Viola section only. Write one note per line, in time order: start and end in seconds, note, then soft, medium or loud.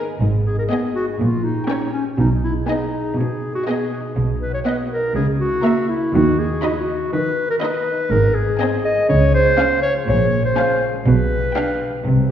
0.70 1.07 B3 soft
1.69 2.06 C#4 soft
2.68 3.05 B3 soft
3.67 4.04 B3 soft
4.66 5.03 B3 soft
5.64 6.01 A#3 soft
6.63 7.00 D#4 medium
7.62 7.99 D#4 medium
8.60 8.97 C4 medium
9.59 9.95 C#4 medium
10.57 10.94 C#4 medium
11.56 11.93 D4 medium